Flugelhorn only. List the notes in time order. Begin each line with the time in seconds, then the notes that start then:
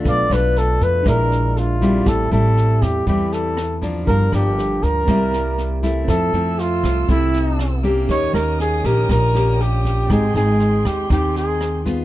0.08 D5
0.33 B4
0.58 A4
0.83 B4
1.08 A#4
1.58 F4
2.08 A4
2.33 A4
2.82 G4
3.08 G4
3.33 A4
4.08 A#4
4.34 G4
4.83 A#4
6.09 A4
6.59 F4
7.10 E4
8.10 C#5
8.34 A#4
8.60 G#4
8.86 A#4
9.12 A#4
9.61 G4
10.12 G#4
10.36 G#4
10.86 G4
11.12 G4
11.37 G#4